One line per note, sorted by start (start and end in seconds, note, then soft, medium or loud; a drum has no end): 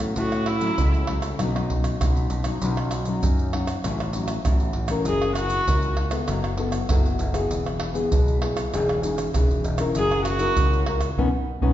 0.00 0.13 A2 medium
0.00 0.58 F#3 medium
0.00 0.58 A3 medium
0.00 0.58 C#4 medium
0.00 pandeiro medium
0.00 tamborim medium
0.00 shaker medium
0.16 0.75 A2 medium
0.16 0.70 A2 medium
0.16 0.49 F#4 medium
0.16 pandeiro medium
0.16 shaker medium
0.16 surdo medium
0.32 pandeiro soft
0.32 tamborim medium
0.32 shaker soft
0.46 1.09 E4 medium
0.46 pandeiro medium
0.46 tamborim medium
0.61 1.03 F#3 medium
0.61 1.04 A3 medium
0.61 1.04 C#4 medium
0.61 pandeiro medium
0.61 shaker medium
0.78 1.31 C#2 medium
0.78 1.37 A2 medium
0.78 pandeiro medium
0.78 shaker medium
0.78 surdo loud
0.94 pandeiro soft
0.94 shaker soft
1.07 1.37 F#3 medium
1.07 1.37 A3 soft
1.07 1.37 C#4 medium
1.07 pandeiro medium
1.07 tamborim medium
1.22 pandeiro medium
1.22 tamborim medium
1.22 shaker medium
1.39 1.92 B1 medium
1.39 1.98 B2 medium
1.39 1.50 F#3 medium
1.39 1.50 C#4 medium
1.39 1.51 D#4 medium
1.39 pandeiro medium
1.39 tamborim medium
1.39 shaker medium
1.39 surdo medium
1.55 1.96 F#3 medium
1.55 1.96 C#4 medium
1.55 1.96 D#4 medium
1.55 pandeiro soft
1.55 tamborim medium
1.55 shaker soft
1.70 pandeiro medium
1.70 surdo medium
1.84 pandeiro medium
1.84 tamborim medium
1.84 shaker medium
2.01 2.27 B1 loud
2.01 2.42 F#3 medium
2.01 2.42 C#4 soft
2.01 2.42 D#4 medium
2.01 pandeiro medium
2.01 tamborim medium
2.01 shaker medium
2.01 surdo loud
2.16 pandeiro soft
2.16 shaker soft
2.30 2.57 B1 medium
2.30 pandeiro medium
2.30 shaker medium
2.44 2.57 F#3 medium
2.44 2.57 C#4 medium
2.44 2.57 D#4 medium
2.44 pandeiro medium
2.44 tamborim medium
2.44 shaker medium
2.62 3.14 B1 medium
2.62 3.21 B2 medium
2.62 2.91 F#3 medium
2.62 2.91 C#4 medium
2.62 2.92 D#4 medium
2.62 pandeiro medium
2.62 shaker medium
2.62 surdo medium
2.77 pandeiro soft
2.77 tamborim medium
2.77 shaker soft
2.91 pandeiro medium
2.91 tamborim medium
2.91 shaker medium
3.05 3.22 F#3 medium
3.05 3.49 C#4 medium
3.05 3.49 D#4 medium
3.05 pandeiro medium
3.05 shaker medium
3.23 3.75 F#2 medium
3.23 3.52 F#3 medium
3.23 pandeiro medium
3.23 shaker medium
3.23 surdo loud
3.39 pandeiro soft
3.39 shaker soft
3.53 3.73 F#3 medium
3.53 3.74 C#4 medium
3.53 3.74 D#4 medium
3.53 pandeiro medium
3.53 tamborim medium
3.67 pandeiro medium
3.67 tamborim medium
3.67 shaker medium
3.84 4.36 A1 loud
3.84 4.43 A2 medium
3.84 4.03 F#3 medium
3.84 4.03 C#4 medium
3.84 4.03 E4 medium
3.84 pandeiro medium
3.84 tamborim medium
3.84 shaker medium
3.84 surdo medium
4.00 pandeiro soft
4.00 tamborim medium
4.00 shaker soft
4.13 4.33 F#3 medium
4.13 4.33 C#4 medium
4.13 4.33 E4 medium
4.13 pandeiro medium
4.13 shaker medium
4.28 pandeiro medium
4.28 tamborim medium
4.28 shaker medium
4.45 4.72 A1 loud
4.45 5.04 E3 medium
4.45 4.87 F#3 soft
4.45 4.87 C#4 medium
4.45 4.87 E4 medium
4.45 pandeiro medium
4.45 tamborim medium
4.45 shaker medium
4.45 surdo loud
4.60 pandeiro soft
4.60 shaker soft
4.73 5.02 A1 medium
4.73 pandeiro medium
4.88 5.31 C#4 medium
4.88 5.32 E4 medium
4.88 5.32 A#4 medium
4.88 pandeiro medium
4.88 tamborim medium
4.88 shaker medium
5.05 5.59 F#1 medium
5.05 5.65 F#3 medium
5.05 5.35 G#4 medium
5.05 pandeiro medium
5.05 shaker medium
5.05 surdo medium
5.22 pandeiro soft
5.22 tamborim medium
5.22 shaker soft
5.35 5.63 C#4 medium
5.35 5.63 E4 medium
5.35 5.94 F#4 medium
5.35 5.63 A#4 medium
5.35 pandeiro medium
5.35 tamborim medium
5.35 shaker medium
5.50 pandeiro medium
5.50 shaker medium
5.67 6.20 C#2 medium
5.67 6.26 C#3 medium
5.67 6.09 C#4 medium
5.67 6.09 E4 medium
5.67 6.09 A#4 medium
5.67 pandeiro medium
5.67 shaker medium
5.67 surdo loud
5.82 pandeiro soft
5.82 shaker soft
5.97 pandeiro medium
5.97 tamborim medium
6.11 6.54 B3 medium
6.11 6.54 E4 medium
6.11 6.54 A4 medium
6.11 pandeiro medium
6.11 tamborim medium
6.11 shaker medium
6.28 6.81 F#1 loud
6.28 6.87 F#3 medium
6.28 pandeiro medium
6.28 tamborim medium
6.28 shaker medium
6.28 surdo medium
6.44 pandeiro soft
6.44 tamborim medium
6.44 shaker soft
6.58 6.85 B3 medium
6.58 6.85 E4 medium
6.58 6.85 A4 medium
6.58 pandeiro medium
6.72 pandeiro medium
6.72 tamborim medium
6.72 shaker medium
6.89 7.16 F#1 medium
6.89 7.48 F#3 medium
6.89 7.19 B3 medium
6.89 7.19 E4 medium
6.89 7.19 A4 medium
6.89 pandeiro medium
6.89 tamborim medium
6.89 shaker medium
6.89 surdo loud
7.06 pandeiro soft
7.06 shaker soft
7.19 7.46 F#1 medium
7.19 pandeiro medium
7.19 shaker medium
7.33 7.91 B3 medium
7.33 7.91 E4 medium
7.33 7.91 G#4 medium
7.33 pandeiro medium
7.33 tamborim medium
7.33 shaker medium
7.50 8.03 E1 medium
7.50 8.09 E3 medium
7.50 pandeiro medium
7.50 shaker medium
7.50 surdo medium
7.66 pandeiro soft
7.66 tamborim medium
7.66 shaker soft
7.80 pandeiro medium
7.80 tamborim medium
7.94 8.37 B3 medium
7.94 8.37 E4 medium
7.94 8.37 G#4 medium
7.94 pandeiro medium
7.94 shaker medium
8.12 8.65 B1 medium
8.12 8.70 B2 medium
8.12 pandeiro medium
8.12 shaker medium
8.12 surdo loud
8.28 pandeiro soft
8.28 shaker soft
8.42 8.71 B3 medium
8.42 8.71 E4 medium
8.42 8.71 G#4 medium
8.42 pandeiro medium
8.42 tamborim medium
8.57 pandeiro medium
8.57 tamborim medium
8.57 shaker medium
8.74 9.26 E1 loud
8.74 9.32 E3 medium
8.74 9.00 C#4 medium
8.74 9.00 D#4 medium
8.74 9.00 G#4 medium
8.74 pandeiro medium
8.74 tamborim medium
8.74 shaker medium
8.74 surdo medium
8.89 pandeiro soft
8.89 tamborim medium
8.89 shaker soft
9.03 9.30 C#4 medium
9.03 9.30 D#4 medium
9.03 9.30 G#4 medium
9.03 pandeiro medium
9.03 shaker medium
9.18 pandeiro medium
9.18 tamborim medium
9.18 shaker medium
9.34 9.61 E1 loud
9.34 9.93 E3 soft
9.34 9.64 C#4 soft
9.34 9.64 D#4 medium
9.34 9.64 G#4 medium
9.34 pandeiro medium
9.34 tamborim medium
9.34 shaker medium
9.34 surdo loud
9.51 pandeiro soft
9.51 shaker soft
9.64 9.91 E1 medium
9.64 pandeiro medium
9.64 shaker medium
9.78 10.36 C#4 medium
9.78 10.36 E4 medium
9.78 10.37 A#4 medium
9.78 pandeiro medium
9.78 tamborim medium
9.78 shaker medium
9.95 10.48 F#1 medium
9.95 10.55 F#3 medium
9.95 10.25 G#4 medium
9.95 pandeiro medium
9.95 shaker medium
9.95 surdo medium
10.11 pandeiro soft
10.11 tamborim medium
10.11 shaker soft
10.25 10.83 F#4 loud
10.25 pandeiro medium
10.25 tamborim medium
10.25 shaker medium
10.39 10.82 C#4 medium
10.39 10.82 E4 medium
10.39 10.82 A#4 medium
10.39 pandeiro medium
10.39 shaker medium
10.57 11.09 C#2 medium
10.57 11.16 C#3 medium
10.57 pandeiro medium
10.57 shaker medium
10.57 surdo loud
10.73 pandeiro soft
10.73 shaker soft
10.86 11.07 C#4 medium
10.86 11.07 E4 medium
10.86 11.07 A#4 medium
10.86 pandeiro medium
10.86 tamborim medium
11.01 pandeiro medium
11.01 tamborim medium
11.01 shaker medium
11.17 11.30 B1 loud
11.17 11.28 B3 loud
11.17 11.28 C#4 loud
11.17 11.28 D#4 medium
11.17 surdo medium
11.61 11.73 B1 medium
11.61 11.73 B3 loud
11.61 11.73 C#4 medium
11.61 11.73 D#4 loud
11.61 surdo loud